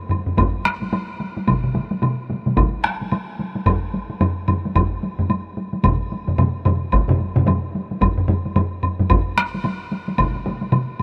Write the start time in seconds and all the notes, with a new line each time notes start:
0.09 taiko low-mid, taiko high, high woodblock
0.26 taiko low-mid
0.37 taiko, taiko low-mid, taiko high, high woodblock
0.65 taiko rim, taiko high
0.82 taiko high
0.93 taiko high, high woodblock
1.20 taiko high
1.37 taiko high
1.47 taiko, taiko mid, taiko high, high woodblock
1.64 taiko mid
1.75 taiko mid, taiko high
1.91 taiko high
2.02 taiko mid, taiko high, high woodblock
2.30 taiko mid, taiko high
2.46 taiko mid, taiko high
2.57 taiko, taiko mid, taiko high, high woodblock
2.84 taiko rim, taiko high
3.01 taiko high
3.12 taiko high, high woodblock
3.39 taiko high
3.55 taiko high
3.66 taiko, taiko low-mid, taiko high, high woodblock
3.94 taiko high
4.10 taiko high
4.21 taiko low-mid, taiko high, high woodblock
4.48 taiko low-mid, taiko high, high woodblock
4.65 taiko high
4.76 taiko, taiko low-mid, taiko high, high woodblock
5.03 taiko high
5.19 taiko low-mid, taiko high
5.30 taiko high, high woodblock
5.57 taiko high
5.73 taiko high
5.84 taiko, taiko low-mid, taiko mid, taiko high, high woodblock
6.12 taiko high
6.28 taiko low-mid, taiko mid, taiko high
6.38 taiko low-mid, taiko mid, taiko high, high woodblock
6.65 taiko low-mid, taiko mid, taiko high, high woodblock
6.92 taiko, taiko high, high woodblock
7.09 taiko low-mid, taiko mid
7.20 taiko high
7.36 taiko low-mid, taiko mid, taiko high
7.46 taiko low-mid, taiko mid, taiko high, high woodblock
7.75 taiko high
7.91 taiko high
8.01 taiko, taiko low-mid, taiko high, high woodblock
8.18 taiko low-mid
8.28 taiko low-mid, taiko high
8.46 taiko high
8.56 taiko low-mid, taiko high, high woodblock
8.83 taiko low-mid, taiko high, high woodblock
8.99 taiko low-mid, taiko high
9.10 taiko, taiko low-mid, taiko high, high woodblock
9.38 taiko rim, taiko high
9.54 taiko high
9.64 taiko high, high woodblock
9.92 taiko high
10.08 taiko high
10.18 taiko, taiko mid, taiko high, high woodblock
10.35 taiko mid
10.46 taiko mid, taiko high
10.62 taiko high
10.72 taiko mid, taiko high, high woodblock
10.99 high woodblock